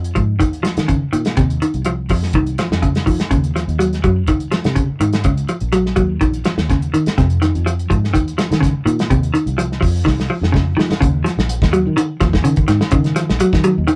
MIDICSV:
0, 0, Header, 1, 5, 480
1, 0, Start_track
1, 0, Tempo, 481541
1, 1373, Time_signature, 4, 2, 24, 8
1, 13911, End_track
2, 0, Start_track
2, 0, Title_t, "Clean electric guitar"
2, 0, Program_c, 0, 27
2, 152, Note_on_c, 0, 53, 68
2, 346, Note_off_c, 0, 53, 0
2, 394, Note_on_c, 0, 51, 76
2, 588, Note_off_c, 0, 51, 0
2, 629, Note_on_c, 0, 53, 72
2, 825, Note_off_c, 0, 53, 0
2, 880, Note_on_c, 0, 49, 69
2, 1073, Note_off_c, 0, 49, 0
2, 1123, Note_on_c, 0, 51, 65
2, 1315, Note_off_c, 0, 51, 0
2, 1366, Note_on_c, 0, 48, 74
2, 1557, Note_off_c, 0, 48, 0
2, 1615, Note_on_c, 0, 51, 65
2, 1803, Note_off_c, 0, 51, 0
2, 1853, Note_on_c, 0, 53, 72
2, 2043, Note_off_c, 0, 53, 0
2, 2099, Note_on_c, 0, 53, 65
2, 2286, Note_off_c, 0, 53, 0
2, 2344, Note_on_c, 0, 51, 77
2, 2530, Note_off_c, 0, 51, 0
2, 2581, Note_on_c, 0, 53, 70
2, 2768, Note_off_c, 0, 53, 0
2, 2815, Note_on_c, 0, 49, 70
2, 3005, Note_off_c, 0, 49, 0
2, 3051, Note_on_c, 0, 51, 63
2, 3243, Note_off_c, 0, 51, 0
2, 3296, Note_on_c, 0, 49, 83
2, 3486, Note_off_c, 0, 49, 0
2, 3545, Note_on_c, 0, 53, 66
2, 3732, Note_off_c, 0, 53, 0
2, 3779, Note_on_c, 0, 54, 70
2, 3969, Note_off_c, 0, 54, 0
2, 4026, Note_on_c, 0, 54, 68
2, 4213, Note_off_c, 0, 54, 0
2, 4268, Note_on_c, 0, 51, 77
2, 4454, Note_off_c, 0, 51, 0
2, 4501, Note_on_c, 0, 53, 63
2, 4690, Note_off_c, 0, 53, 0
2, 4740, Note_on_c, 0, 49, 68
2, 4930, Note_off_c, 0, 49, 0
2, 4990, Note_on_c, 0, 51, 68
2, 5177, Note_off_c, 0, 51, 0
2, 5232, Note_on_c, 0, 49, 79
2, 5418, Note_off_c, 0, 49, 0
2, 5472, Note_on_c, 0, 53, 67
2, 5658, Note_off_c, 0, 53, 0
2, 5707, Note_on_c, 0, 54, 73
2, 5895, Note_off_c, 0, 54, 0
2, 5941, Note_on_c, 0, 54, 73
2, 6132, Note_off_c, 0, 54, 0
2, 6188, Note_on_c, 0, 51, 76
2, 6376, Note_off_c, 0, 51, 0
2, 6436, Note_on_c, 0, 53, 66
2, 6621, Note_off_c, 0, 53, 0
2, 6683, Note_on_c, 0, 49, 67
2, 6865, Note_off_c, 0, 49, 0
2, 6915, Note_on_c, 0, 51, 69
2, 7100, Note_off_c, 0, 51, 0
2, 7155, Note_on_c, 0, 48, 74
2, 7340, Note_off_c, 0, 48, 0
2, 7394, Note_on_c, 0, 51, 65
2, 7579, Note_off_c, 0, 51, 0
2, 7637, Note_on_c, 0, 53, 76
2, 7821, Note_off_c, 0, 53, 0
2, 7874, Note_on_c, 0, 53, 75
2, 8059, Note_off_c, 0, 53, 0
2, 8109, Note_on_c, 0, 51, 83
2, 8296, Note_off_c, 0, 51, 0
2, 8354, Note_on_c, 0, 53, 70
2, 8539, Note_off_c, 0, 53, 0
2, 8578, Note_on_c, 0, 49, 74
2, 8769, Note_off_c, 0, 49, 0
2, 8828, Note_on_c, 0, 51, 66
2, 9015, Note_off_c, 0, 51, 0
2, 9074, Note_on_c, 0, 48, 85
2, 9258, Note_off_c, 0, 48, 0
2, 9307, Note_on_c, 0, 51, 75
2, 9494, Note_off_c, 0, 51, 0
2, 9550, Note_on_c, 0, 53, 76
2, 9735, Note_off_c, 0, 53, 0
2, 9775, Note_on_c, 0, 53, 68
2, 9966, Note_off_c, 0, 53, 0
2, 10017, Note_on_c, 0, 51, 83
2, 10207, Note_off_c, 0, 51, 0
2, 10266, Note_on_c, 0, 53, 67
2, 10452, Note_off_c, 0, 53, 0
2, 10490, Note_on_c, 0, 49, 75
2, 10682, Note_off_c, 0, 49, 0
2, 10733, Note_on_c, 0, 51, 68
2, 10923, Note_off_c, 0, 51, 0
2, 10970, Note_on_c, 0, 49, 88
2, 11161, Note_off_c, 0, 49, 0
2, 11208, Note_on_c, 0, 53, 69
2, 11399, Note_off_c, 0, 53, 0
2, 11692, Note_on_c, 0, 54, 75
2, 11881, Note_off_c, 0, 54, 0
2, 11928, Note_on_c, 0, 51, 90
2, 12118, Note_off_c, 0, 51, 0
2, 12166, Note_on_c, 0, 53, 72
2, 12356, Note_off_c, 0, 53, 0
2, 12400, Note_on_c, 0, 49, 80
2, 12591, Note_off_c, 0, 49, 0
2, 12638, Note_on_c, 0, 51, 72
2, 12830, Note_off_c, 0, 51, 0
2, 12875, Note_on_c, 0, 49, 89
2, 13067, Note_off_c, 0, 49, 0
2, 13117, Note_on_c, 0, 53, 74
2, 13308, Note_off_c, 0, 53, 0
2, 13362, Note_on_c, 0, 54, 77
2, 13551, Note_off_c, 0, 54, 0
2, 13597, Note_on_c, 0, 54, 75
2, 13787, Note_off_c, 0, 54, 0
2, 13830, Note_on_c, 0, 51, 86
2, 13911, Note_off_c, 0, 51, 0
2, 13911, End_track
3, 0, Start_track
3, 0, Title_t, "Fingered electric bass"
3, 0, Program_c, 1, 33
3, 0, Note_on_c, 1, 41, 72
3, 132, Note_off_c, 1, 41, 0
3, 166, Note_on_c, 1, 44, 76
3, 410, Note_off_c, 1, 44, 0
3, 410, Note_on_c, 1, 39, 76
3, 629, Note_off_c, 1, 39, 0
3, 768, Note_on_c, 1, 51, 75
3, 991, Note_off_c, 1, 51, 0
3, 1123, Note_on_c, 1, 46, 80
3, 1347, Note_off_c, 1, 46, 0
3, 1374, Note_on_c, 1, 39, 83
3, 1593, Note_off_c, 1, 39, 0
3, 1733, Note_on_c, 1, 36, 77
3, 2062, Note_off_c, 1, 36, 0
3, 2095, Note_on_c, 1, 41, 71
3, 2315, Note_off_c, 1, 41, 0
3, 2329, Note_on_c, 1, 36, 84
3, 2553, Note_off_c, 1, 36, 0
3, 2699, Note_on_c, 1, 41, 72
3, 3026, Note_off_c, 1, 41, 0
3, 3058, Note_on_c, 1, 53, 75
3, 3173, Note_off_c, 1, 53, 0
3, 3304, Note_on_c, 1, 39, 88
3, 3636, Note_off_c, 1, 39, 0
3, 3667, Note_on_c, 1, 39, 80
3, 3992, Note_off_c, 1, 39, 0
3, 4028, Note_on_c, 1, 42, 71
3, 4265, Note_off_c, 1, 42, 0
3, 4265, Note_on_c, 1, 37, 82
3, 4484, Note_off_c, 1, 37, 0
3, 4633, Note_on_c, 1, 48, 74
3, 4851, Note_off_c, 1, 48, 0
3, 4983, Note_on_c, 1, 44, 73
3, 5203, Note_off_c, 1, 44, 0
3, 5230, Note_on_c, 1, 37, 82
3, 5448, Note_off_c, 1, 37, 0
3, 5593, Note_on_c, 1, 34, 79
3, 5917, Note_off_c, 1, 34, 0
3, 5952, Note_on_c, 1, 39, 75
3, 6169, Note_off_c, 1, 39, 0
3, 6191, Note_on_c, 1, 34, 80
3, 6409, Note_off_c, 1, 34, 0
3, 6552, Note_on_c, 1, 39, 76
3, 6877, Note_off_c, 1, 39, 0
3, 6912, Note_on_c, 1, 51, 75
3, 7024, Note_off_c, 1, 51, 0
3, 7158, Note_on_c, 1, 41, 91
3, 7486, Note_off_c, 1, 41, 0
3, 7528, Note_on_c, 1, 41, 75
3, 7845, Note_off_c, 1, 41, 0
3, 7882, Note_on_c, 1, 44, 78
3, 8118, Note_off_c, 1, 44, 0
3, 8118, Note_on_c, 1, 39, 87
3, 8332, Note_off_c, 1, 39, 0
3, 8481, Note_on_c, 1, 51, 77
3, 8696, Note_off_c, 1, 51, 0
3, 8825, Note_on_c, 1, 46, 87
3, 9045, Note_off_c, 1, 46, 0
3, 9079, Note_on_c, 1, 39, 87
3, 9292, Note_off_c, 1, 39, 0
3, 9430, Note_on_c, 1, 36, 81
3, 9754, Note_off_c, 1, 36, 0
3, 9793, Note_on_c, 1, 41, 82
3, 10008, Note_off_c, 1, 41, 0
3, 10035, Note_on_c, 1, 36, 82
3, 10249, Note_off_c, 1, 36, 0
3, 10381, Note_on_c, 1, 41, 83
3, 10707, Note_off_c, 1, 41, 0
3, 10734, Note_on_c, 1, 53, 86
3, 10850, Note_off_c, 1, 53, 0
3, 10986, Note_on_c, 1, 39, 94
3, 11201, Note_off_c, 1, 39, 0
3, 11337, Note_on_c, 1, 34, 84
3, 11558, Note_off_c, 1, 34, 0
3, 11579, Note_on_c, 1, 39, 81
3, 11798, Note_off_c, 1, 39, 0
3, 11827, Note_on_c, 1, 51, 91
3, 12042, Note_off_c, 1, 51, 0
3, 12171, Note_on_c, 1, 39, 95
3, 12390, Note_off_c, 1, 39, 0
3, 12408, Note_on_c, 1, 51, 90
3, 12628, Note_off_c, 1, 51, 0
3, 12642, Note_on_c, 1, 44, 85
3, 12759, Note_off_c, 1, 44, 0
3, 12883, Note_on_c, 1, 51, 100
3, 13217, Note_off_c, 1, 51, 0
3, 13255, Note_on_c, 1, 34, 93
3, 13359, Note_off_c, 1, 34, 0
3, 13488, Note_on_c, 1, 51, 80
3, 13707, Note_off_c, 1, 51, 0
3, 13734, Note_on_c, 1, 39, 86
3, 13837, Note_off_c, 1, 39, 0
3, 13911, End_track
4, 0, Start_track
4, 0, Title_t, "Muted fingered electric bass strokes"
4, 1019, Note_on_c, 9, 29, 29
4, 1118, Note_off_c, 9, 29, 0
4, 3190, Note_on_c, 9, 29, 28
4, 3290, Note_off_c, 9, 29, 0
4, 4872, Note_on_c, 9, 29, 30
4, 4971, Note_off_c, 9, 29, 0
4, 7041, Note_on_c, 9, 29, 32
4, 7141, Note_off_c, 9, 29, 0
4, 8710, Note_on_c, 9, 29, 29
4, 8810, Note_off_c, 9, 29, 0
4, 10865, Note_on_c, 9, 29, 33
4, 10965, Note_off_c, 9, 29, 0
4, 13911, End_track
5, 0, Start_track
5, 0, Title_t, "Drums"
5, 44, Note_on_c, 9, 42, 33
5, 143, Note_off_c, 9, 42, 0
5, 156, Note_on_c, 9, 42, 43
5, 161, Note_on_c, 9, 36, 57
5, 256, Note_off_c, 9, 42, 0
5, 261, Note_off_c, 9, 36, 0
5, 403, Note_on_c, 9, 42, 65
5, 404, Note_on_c, 9, 36, 65
5, 502, Note_off_c, 9, 42, 0
5, 504, Note_off_c, 9, 36, 0
5, 530, Note_on_c, 9, 42, 29
5, 629, Note_off_c, 9, 42, 0
5, 645, Note_on_c, 9, 42, 49
5, 654, Note_on_c, 9, 38, 57
5, 745, Note_off_c, 9, 42, 0
5, 754, Note_off_c, 9, 38, 0
5, 766, Note_on_c, 9, 42, 35
5, 775, Note_on_c, 9, 38, 66
5, 866, Note_off_c, 9, 42, 0
5, 875, Note_off_c, 9, 38, 0
5, 882, Note_on_c, 9, 42, 56
5, 886, Note_on_c, 9, 36, 58
5, 982, Note_off_c, 9, 42, 0
5, 985, Note_off_c, 9, 36, 0
5, 1127, Note_on_c, 9, 42, 53
5, 1227, Note_off_c, 9, 42, 0
5, 1245, Note_on_c, 9, 42, 33
5, 1254, Note_on_c, 9, 38, 70
5, 1345, Note_off_c, 9, 42, 0
5, 1354, Note_off_c, 9, 38, 0
5, 1363, Note_on_c, 9, 42, 67
5, 1369, Note_on_c, 9, 36, 86
5, 1372, Note_on_c, 9, 38, 26
5, 1463, Note_off_c, 9, 42, 0
5, 1469, Note_off_c, 9, 36, 0
5, 1472, Note_off_c, 9, 38, 0
5, 1497, Note_on_c, 9, 42, 29
5, 1597, Note_off_c, 9, 42, 0
5, 1614, Note_on_c, 9, 42, 41
5, 1714, Note_off_c, 9, 42, 0
5, 1733, Note_on_c, 9, 42, 27
5, 1832, Note_off_c, 9, 42, 0
5, 1840, Note_on_c, 9, 42, 62
5, 1940, Note_off_c, 9, 42, 0
5, 2086, Note_on_c, 9, 46, 57
5, 2090, Note_on_c, 9, 36, 60
5, 2185, Note_off_c, 9, 46, 0
5, 2190, Note_off_c, 9, 36, 0
5, 2220, Note_on_c, 9, 38, 27
5, 2320, Note_off_c, 9, 38, 0
5, 2324, Note_on_c, 9, 42, 64
5, 2331, Note_on_c, 9, 36, 60
5, 2424, Note_off_c, 9, 42, 0
5, 2430, Note_off_c, 9, 36, 0
5, 2457, Note_on_c, 9, 42, 27
5, 2556, Note_off_c, 9, 42, 0
5, 2574, Note_on_c, 9, 42, 47
5, 2583, Note_on_c, 9, 38, 59
5, 2673, Note_off_c, 9, 42, 0
5, 2682, Note_off_c, 9, 38, 0
5, 2711, Note_on_c, 9, 38, 70
5, 2811, Note_off_c, 9, 38, 0
5, 2818, Note_on_c, 9, 36, 59
5, 2818, Note_on_c, 9, 42, 54
5, 2917, Note_off_c, 9, 42, 0
5, 2918, Note_off_c, 9, 36, 0
5, 2940, Note_on_c, 9, 42, 26
5, 2949, Note_on_c, 9, 38, 61
5, 3040, Note_off_c, 9, 42, 0
5, 3049, Note_off_c, 9, 38, 0
5, 3060, Note_on_c, 9, 36, 63
5, 3060, Note_on_c, 9, 46, 57
5, 3160, Note_off_c, 9, 36, 0
5, 3160, Note_off_c, 9, 46, 0
5, 3180, Note_on_c, 9, 42, 28
5, 3189, Note_on_c, 9, 38, 65
5, 3279, Note_off_c, 9, 42, 0
5, 3288, Note_off_c, 9, 38, 0
5, 3298, Note_on_c, 9, 42, 56
5, 3301, Note_on_c, 9, 36, 74
5, 3398, Note_off_c, 9, 42, 0
5, 3401, Note_off_c, 9, 36, 0
5, 3426, Note_on_c, 9, 42, 30
5, 3526, Note_off_c, 9, 42, 0
5, 3552, Note_on_c, 9, 42, 38
5, 3561, Note_on_c, 9, 38, 23
5, 3652, Note_off_c, 9, 42, 0
5, 3661, Note_off_c, 9, 38, 0
5, 3676, Note_on_c, 9, 42, 23
5, 3775, Note_off_c, 9, 42, 0
5, 3792, Note_on_c, 9, 42, 65
5, 3891, Note_off_c, 9, 42, 0
5, 3916, Note_on_c, 9, 42, 30
5, 3925, Note_on_c, 9, 38, 25
5, 4016, Note_off_c, 9, 42, 0
5, 4025, Note_off_c, 9, 38, 0
5, 4025, Note_on_c, 9, 36, 67
5, 4026, Note_on_c, 9, 42, 44
5, 4125, Note_off_c, 9, 36, 0
5, 4125, Note_off_c, 9, 42, 0
5, 4261, Note_on_c, 9, 42, 66
5, 4266, Note_on_c, 9, 36, 62
5, 4360, Note_off_c, 9, 42, 0
5, 4365, Note_off_c, 9, 36, 0
5, 4387, Note_on_c, 9, 42, 31
5, 4487, Note_off_c, 9, 42, 0
5, 4502, Note_on_c, 9, 42, 50
5, 4511, Note_on_c, 9, 38, 68
5, 4602, Note_off_c, 9, 42, 0
5, 4611, Note_off_c, 9, 38, 0
5, 4628, Note_on_c, 9, 42, 30
5, 4637, Note_on_c, 9, 38, 72
5, 4728, Note_off_c, 9, 42, 0
5, 4737, Note_off_c, 9, 38, 0
5, 4744, Note_on_c, 9, 42, 65
5, 4746, Note_on_c, 9, 36, 60
5, 4843, Note_off_c, 9, 42, 0
5, 4846, Note_off_c, 9, 36, 0
5, 4990, Note_on_c, 9, 42, 50
5, 5090, Note_off_c, 9, 42, 0
5, 5110, Note_on_c, 9, 42, 33
5, 5119, Note_on_c, 9, 38, 69
5, 5210, Note_off_c, 9, 42, 0
5, 5219, Note_off_c, 9, 38, 0
5, 5222, Note_on_c, 9, 42, 69
5, 5228, Note_on_c, 9, 36, 77
5, 5321, Note_off_c, 9, 42, 0
5, 5328, Note_off_c, 9, 36, 0
5, 5357, Note_on_c, 9, 42, 32
5, 5457, Note_off_c, 9, 42, 0
5, 5468, Note_on_c, 9, 42, 47
5, 5568, Note_off_c, 9, 42, 0
5, 5586, Note_on_c, 9, 42, 28
5, 5686, Note_off_c, 9, 42, 0
5, 5706, Note_on_c, 9, 42, 64
5, 5806, Note_off_c, 9, 42, 0
5, 5842, Note_on_c, 9, 38, 28
5, 5941, Note_off_c, 9, 38, 0
5, 5944, Note_on_c, 9, 42, 46
5, 5950, Note_on_c, 9, 36, 64
5, 6043, Note_off_c, 9, 42, 0
5, 6050, Note_off_c, 9, 36, 0
5, 6190, Note_on_c, 9, 42, 61
5, 6192, Note_on_c, 9, 36, 57
5, 6290, Note_off_c, 9, 42, 0
5, 6292, Note_off_c, 9, 36, 0
5, 6315, Note_on_c, 9, 42, 31
5, 6415, Note_off_c, 9, 42, 0
5, 6425, Note_on_c, 9, 42, 47
5, 6434, Note_on_c, 9, 38, 66
5, 6524, Note_off_c, 9, 42, 0
5, 6533, Note_off_c, 9, 38, 0
5, 6557, Note_on_c, 9, 38, 68
5, 6657, Note_off_c, 9, 38, 0
5, 6674, Note_on_c, 9, 36, 64
5, 6676, Note_on_c, 9, 42, 58
5, 6685, Note_on_c, 9, 38, 25
5, 6774, Note_off_c, 9, 36, 0
5, 6775, Note_off_c, 9, 42, 0
5, 6784, Note_off_c, 9, 38, 0
5, 6801, Note_on_c, 9, 42, 30
5, 6900, Note_off_c, 9, 42, 0
5, 6919, Note_on_c, 9, 42, 51
5, 7019, Note_off_c, 9, 42, 0
5, 7040, Note_on_c, 9, 42, 33
5, 7049, Note_on_c, 9, 38, 64
5, 7140, Note_off_c, 9, 42, 0
5, 7149, Note_off_c, 9, 38, 0
5, 7157, Note_on_c, 9, 36, 78
5, 7158, Note_on_c, 9, 42, 57
5, 7167, Note_on_c, 9, 38, 26
5, 7257, Note_off_c, 9, 36, 0
5, 7258, Note_off_c, 9, 42, 0
5, 7266, Note_off_c, 9, 38, 0
5, 7276, Note_on_c, 9, 42, 27
5, 7375, Note_off_c, 9, 42, 0
5, 7399, Note_on_c, 9, 42, 46
5, 7408, Note_on_c, 9, 38, 24
5, 7498, Note_off_c, 9, 42, 0
5, 7507, Note_off_c, 9, 38, 0
5, 7528, Note_on_c, 9, 42, 24
5, 7628, Note_off_c, 9, 42, 0
5, 7647, Note_on_c, 9, 42, 59
5, 7746, Note_off_c, 9, 42, 0
5, 7768, Note_on_c, 9, 42, 32
5, 7868, Note_off_c, 9, 42, 0
5, 7880, Note_on_c, 9, 36, 60
5, 7887, Note_on_c, 9, 42, 45
5, 7980, Note_off_c, 9, 36, 0
5, 7987, Note_off_c, 9, 42, 0
5, 8018, Note_on_c, 9, 38, 28
5, 8118, Note_off_c, 9, 38, 0
5, 8120, Note_on_c, 9, 36, 65
5, 8125, Note_on_c, 9, 42, 71
5, 8219, Note_off_c, 9, 36, 0
5, 8225, Note_off_c, 9, 42, 0
5, 8251, Note_on_c, 9, 42, 30
5, 8351, Note_off_c, 9, 42, 0
5, 8358, Note_on_c, 9, 42, 53
5, 8367, Note_on_c, 9, 38, 70
5, 8458, Note_off_c, 9, 42, 0
5, 8467, Note_off_c, 9, 38, 0
5, 8490, Note_on_c, 9, 42, 34
5, 8499, Note_on_c, 9, 38, 68
5, 8589, Note_off_c, 9, 42, 0
5, 8598, Note_off_c, 9, 38, 0
5, 8600, Note_on_c, 9, 36, 63
5, 8606, Note_on_c, 9, 42, 64
5, 8615, Note_on_c, 9, 38, 24
5, 8700, Note_off_c, 9, 36, 0
5, 8705, Note_off_c, 9, 42, 0
5, 8714, Note_off_c, 9, 38, 0
5, 8843, Note_on_c, 9, 42, 53
5, 8943, Note_off_c, 9, 42, 0
5, 8963, Note_on_c, 9, 42, 34
5, 8972, Note_on_c, 9, 38, 67
5, 9063, Note_off_c, 9, 42, 0
5, 9071, Note_off_c, 9, 38, 0
5, 9077, Note_on_c, 9, 36, 88
5, 9079, Note_on_c, 9, 42, 63
5, 9177, Note_off_c, 9, 36, 0
5, 9179, Note_off_c, 9, 42, 0
5, 9203, Note_on_c, 9, 42, 33
5, 9303, Note_off_c, 9, 42, 0
5, 9319, Note_on_c, 9, 42, 43
5, 9419, Note_off_c, 9, 42, 0
5, 9439, Note_on_c, 9, 42, 31
5, 9539, Note_off_c, 9, 42, 0
5, 9558, Note_on_c, 9, 42, 66
5, 9658, Note_off_c, 9, 42, 0
5, 9690, Note_on_c, 9, 38, 27
5, 9790, Note_off_c, 9, 38, 0
5, 9793, Note_on_c, 9, 36, 68
5, 9799, Note_on_c, 9, 46, 61
5, 9893, Note_off_c, 9, 36, 0
5, 9898, Note_off_c, 9, 46, 0
5, 10029, Note_on_c, 9, 36, 63
5, 10038, Note_on_c, 9, 38, 46
5, 10129, Note_off_c, 9, 36, 0
5, 10138, Note_off_c, 9, 38, 0
5, 10165, Note_on_c, 9, 38, 41
5, 10264, Note_off_c, 9, 38, 0
5, 10401, Note_on_c, 9, 38, 52
5, 10500, Note_off_c, 9, 38, 0
5, 10506, Note_on_c, 9, 36, 64
5, 10518, Note_on_c, 9, 38, 60
5, 10605, Note_off_c, 9, 36, 0
5, 10617, Note_off_c, 9, 38, 0
5, 10760, Note_on_c, 9, 38, 75
5, 10859, Note_off_c, 9, 38, 0
5, 10883, Note_on_c, 9, 38, 71
5, 10982, Note_off_c, 9, 38, 0
5, 10985, Note_on_c, 9, 36, 94
5, 10987, Note_on_c, 9, 42, 63
5, 11084, Note_off_c, 9, 36, 0
5, 11087, Note_off_c, 9, 42, 0
5, 11224, Note_on_c, 9, 42, 44
5, 11233, Note_on_c, 9, 38, 26
5, 11323, Note_off_c, 9, 42, 0
5, 11332, Note_off_c, 9, 38, 0
5, 11351, Note_on_c, 9, 38, 61
5, 11450, Note_off_c, 9, 38, 0
5, 11457, Note_on_c, 9, 42, 72
5, 11556, Note_off_c, 9, 42, 0
5, 11581, Note_on_c, 9, 36, 74
5, 11589, Note_on_c, 9, 38, 71
5, 11681, Note_off_c, 9, 36, 0
5, 11689, Note_off_c, 9, 38, 0
5, 11697, Note_on_c, 9, 42, 49
5, 11797, Note_off_c, 9, 42, 0
5, 11938, Note_on_c, 9, 42, 75
5, 12038, Note_off_c, 9, 42, 0
5, 12167, Note_on_c, 9, 42, 48
5, 12171, Note_on_c, 9, 36, 70
5, 12176, Note_on_c, 9, 38, 28
5, 12267, Note_off_c, 9, 42, 0
5, 12271, Note_off_c, 9, 36, 0
5, 12276, Note_off_c, 9, 38, 0
5, 12294, Note_on_c, 9, 36, 67
5, 12300, Note_on_c, 9, 38, 72
5, 12394, Note_off_c, 9, 36, 0
5, 12399, Note_off_c, 9, 38, 0
5, 12407, Note_on_c, 9, 42, 66
5, 12506, Note_off_c, 9, 42, 0
5, 12523, Note_on_c, 9, 42, 33
5, 12531, Note_on_c, 9, 36, 67
5, 12622, Note_off_c, 9, 42, 0
5, 12631, Note_off_c, 9, 36, 0
5, 12638, Note_on_c, 9, 42, 55
5, 12647, Note_on_c, 9, 38, 28
5, 12738, Note_off_c, 9, 42, 0
5, 12747, Note_off_c, 9, 38, 0
5, 12769, Note_on_c, 9, 38, 75
5, 12868, Note_off_c, 9, 38, 0
5, 12869, Note_on_c, 9, 42, 69
5, 12881, Note_on_c, 9, 36, 88
5, 12969, Note_off_c, 9, 42, 0
5, 12981, Note_off_c, 9, 36, 0
5, 13000, Note_on_c, 9, 42, 32
5, 13009, Note_on_c, 9, 38, 27
5, 13100, Note_off_c, 9, 42, 0
5, 13109, Note_off_c, 9, 38, 0
5, 13116, Note_on_c, 9, 42, 52
5, 13125, Note_on_c, 9, 38, 26
5, 13216, Note_off_c, 9, 42, 0
5, 13225, Note_off_c, 9, 38, 0
5, 13253, Note_on_c, 9, 38, 62
5, 13352, Note_off_c, 9, 38, 0
5, 13355, Note_on_c, 9, 42, 78
5, 13455, Note_off_c, 9, 42, 0
5, 13486, Note_on_c, 9, 36, 73
5, 13493, Note_on_c, 9, 38, 65
5, 13585, Note_off_c, 9, 36, 0
5, 13592, Note_off_c, 9, 38, 0
5, 13593, Note_on_c, 9, 42, 54
5, 13693, Note_off_c, 9, 42, 0
5, 13836, Note_on_c, 9, 42, 67
5, 13911, Note_off_c, 9, 42, 0
5, 13911, End_track
0, 0, End_of_file